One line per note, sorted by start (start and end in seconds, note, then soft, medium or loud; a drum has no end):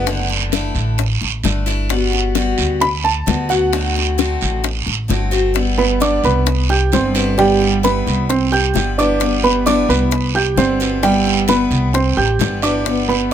0.00 0.69 F#1 medium
0.00 0.26 F#5 medium
0.06 0.52 D3 medium
0.06 0.52 A3 medium
0.06 0.52 D4 medium
0.06 0.53 E4 medium
0.06 high bongo medium
0.06 long guiro medium
0.30 high bongo soft
0.52 0.97 D3 medium
0.52 0.98 A3 medium
0.52 0.98 D4 medium
0.52 0.98 E4 medium
0.52 high bongo medium
0.52 short guiro medium
0.74 1.18 A1 medium
0.74 short guiro medium
0.98 muted steel-string acoustic guitar stroke medium
0.98 high bongo medium
0.98 long guiro medium
1.21 1.43 A1 medium
1.21 high bongo soft
1.43 2.52 G1 medium
1.43 1.66 D3 medium
1.43 1.66 A3 medium
1.43 1.66 D4 medium
1.43 1.65 E4 medium
1.43 high bongo soft
1.43 low bongo medium
1.43 short guiro medium
1.66 1.89 A3 medium
1.66 1.89 D4 medium
1.66 1.89 E4 medium
1.66 high bongo soft
1.66 short guiro medium
1.89 2.35 G3 medium
1.89 2.35 B3 medium
1.89 2.35 F#4 medium
1.89 high bongo medium
1.89 long guiro medium
2.13 high bongo soft
2.35 2.80 G3 medium
2.35 2.80 B3 medium
2.35 2.80 F#4 medium
2.35 high bongo medium
2.35 short guiro medium
2.58 3.23 D2 medium
2.58 short guiro medium
2.80 3.03 B5 loud
2.80 muted steel-string acoustic guitar stroke medium
2.80 high bongo medium
2.80 long guiro medium
3.04 3.47 A5 medium
3.04 high bongo soft
3.26 4.35 D2 loud
3.26 3.49 G3 soft
3.26 3.49 B3 medium
3.26 3.48 F#4 medium
3.26 high bongo soft
3.26 low bongo medium
3.26 short guiro medium
3.49 3.72 B3 medium
3.49 3.71 F#4 medium
3.49 3.92 F#5 medium
3.49 high bongo soft
3.49 short guiro medium
3.73 4.17 D3 medium
3.73 4.17 A3 medium
3.73 4.17 C4 medium
3.73 4.18 F#4 medium
3.73 high bongo medium
3.73 long guiro medium
3.97 high bongo soft
4.18 4.63 D3 medium
4.18 4.62 A3 medium
4.18 4.63 C4 medium
4.18 4.63 F#4 medium
4.18 high bongo medium
4.18 short guiro medium
4.41 4.84 A1 medium
4.41 short guiro medium
4.64 muted steel-string acoustic guitar stroke medium
4.64 high bongo medium
4.64 long guiro medium
4.86 5.08 A1 medium
4.86 high bongo soft
5.08 6.17 G1 medium
5.08 5.31 D3 medium
5.08 5.31 A3 medium
5.08 5.30 C4 medium
5.08 5.30 F#4 medium
5.08 high bongo soft
5.08 low bongo medium
5.08 short guiro medium
5.31 5.53 A3 medium
5.31 5.54 C4 medium
5.31 5.54 F#4 medium
5.31 high bongo soft
5.31 short guiro medium
5.54 5.99 G3 medium
5.54 6.00 B3 medium
5.54 6.00 E4 medium
5.54 high bongo medium
5.54 long guiro medium
5.78 5.97 B3 medium
5.78 5.97 B4 medium
5.78 5.97 B5 medium
5.78 high bongo soft
6.00 6.45 G3 medium
6.00 6.46 B3 medium
6.00 6.20 D4 medium
6.00 6.45 E4 medium
6.00 6.20 D5 medium
6.00 6.20 D6 medium
6.00 high bongo medium
6.00 short guiro medium
6.24 6.88 C2 medium
6.24 6.62 B3 medium
6.24 6.62 B4 medium
6.24 6.62 B5 medium
6.24 high bongo soft
6.24 short guiro medium
6.46 muted steel-string acoustic guitar stroke medium
6.46 high bongo medium
6.46 long guiro medium
6.69 6.88 G4 medium
6.69 6.88 G5 medium
6.69 6.89 G6 medium
6.69 high bongo soft
6.92 8.00 G1 medium
6.92 7.14 E3 soft
6.92 7.15 G3 medium
6.92 7.15 B3 medium
6.92 7.30 C4 medium
6.92 7.13 E4 medium
6.92 7.30 C5 medium
6.92 7.31 C6 medium
6.92 high bongo soft
6.92 low bongo medium
6.92 short guiro medium
7.15 7.38 E3 medium
7.15 7.36 G3 medium
7.15 7.37 B3 medium
7.15 7.37 E4 medium
7.15 short guiro medium
7.38 7.82 G3 medium
7.38 7.75 G3 medium
7.38 7.83 B3 medium
7.38 7.83 E4 medium
7.38 7.76 G4 medium
7.38 7.76 G5 medium
7.38 high bongo medium
7.38 long guiro medium
7.61 high bongo soft
7.83 8.28 G3 medium
7.83 8.21 B3 medium
7.83 8.29 B3 medium
7.83 8.29 E4 medium
7.83 8.21 B4 medium
7.83 8.22 B5 medium
7.83 high bongo medium
7.83 short guiro medium
8.07 8.71 C2 medium
8.07 high bongo soft
8.07 short guiro medium
8.29 8.48 C4 medium
8.29 8.48 C5 medium
8.29 8.48 C6 medium
8.29 muted steel-string acoustic guitar stroke medium
8.29 high bongo medium
8.29 long guiro medium
8.52 8.89 G4 medium
8.52 8.90 G5 medium
8.52 8.90 G6 medium
8.52 high bongo soft
8.74 9.83 G1 medium
8.74 8.96 E3 medium
8.74 8.97 G3 medium
8.74 8.97 B3 medium
8.74 8.97 E4 medium
8.74 high bongo soft
8.74 low bongo medium
8.74 short guiro medium
8.98 9.21 E3 medium
8.98 9.19 G3 medium
8.98 9.20 B3 medium
8.98 9.35 D4 medium
8.98 9.20 E4 medium
8.98 9.36 D5 medium
8.98 9.36 D6 medium
8.98 short guiro medium
9.20 9.65 G3 medium
9.20 9.66 B3 medium
9.20 9.66 E4 medium
9.20 high bongo medium
9.20 long guiro medium
9.43 9.62 B3 medium
9.43 9.62 B4 medium
9.43 9.63 B5 medium
9.43 high bongo soft
9.66 10.10 G3 medium
9.66 10.11 B3 medium
9.66 9.85 D4 medium
9.66 10.10 E4 medium
9.66 9.85 D5 medium
9.66 9.85 D6 medium
9.66 high bongo medium
9.66 short guiro medium
9.89 10.53 C2 medium
9.89 10.27 B3 medium
9.89 10.27 B4 medium
9.89 10.27 B5 medium
9.89 high bongo soft
9.89 short guiro medium
10.11 muted steel-string acoustic guitar stroke medium
10.11 high bongo medium
10.11 long guiro medium
10.35 10.54 G4 medium
10.35 10.54 G5 medium
10.35 10.54 G6 medium
10.35 high bongo soft
10.56 11.65 G1 medium
10.56 10.79 E3 soft
10.56 10.80 G3 medium
10.56 10.79 B3 medium
10.56 10.95 C4 medium
10.56 10.79 E4 medium
10.56 10.95 C5 medium
10.56 10.95 C6 medium
10.56 high bongo soft
10.56 low bongo medium
10.56 short guiro medium
10.80 11.03 E3 medium
10.80 11.01 G3 medium
10.80 11.02 B3 medium
10.80 11.02 E4 medium
10.80 short guiro medium
11.03 11.47 G3 medium
11.03 11.41 G3 medium
11.03 11.48 B3 medium
11.03 11.48 E4 medium
11.03 11.41 G4 medium
11.03 11.41 G5 medium
11.03 high bongo medium
11.03 long guiro medium
11.26 high bongo soft
11.48 11.93 G3 medium
11.48 11.86 B3 medium
11.48 11.93 B3 medium
11.48 11.94 E4 medium
11.48 11.87 B4 medium
11.48 11.87 B5 medium
11.48 high bongo medium
11.48 short guiro medium
11.70 12.14 C2 medium
11.70 high bongo soft
11.70 short guiro medium
11.93 12.13 C4 medium
11.93 12.13 C5 medium
11.93 12.13 C6 medium
11.93 muted steel-string acoustic guitar stroke medium
11.93 high bongo medium
11.93 long guiro medium
12.17 12.38 A1 medium
12.17 12.55 G4 medium
12.17 12.55 G5 medium
12.17 12.55 G6 medium
12.17 high bongo soft
12.39 13.33 G1 medium
12.39 12.62 E3 medium
12.39 12.62 G3 medium
12.39 12.62 B3 medium
12.39 12.62 E4 medium
12.39 high bongo soft
12.39 low bongo medium
12.39 short guiro medium
12.62 12.86 E3 medium
12.62 12.85 G3 medium
12.62 12.85 B3 medium
12.62 13.00 D4 medium
12.62 12.85 E4 medium
12.62 13.01 D5 medium
12.62 13.01 D6 medium
12.62 short guiro medium
12.85 13.30 G3 medium
12.85 13.31 B3 medium
12.85 13.32 E4 medium
12.85 high bongo medium
12.85 long guiro medium
13.08 13.27 B3 medium
13.08 13.28 B4 medium
13.08 13.28 B5 medium
13.08 high bongo soft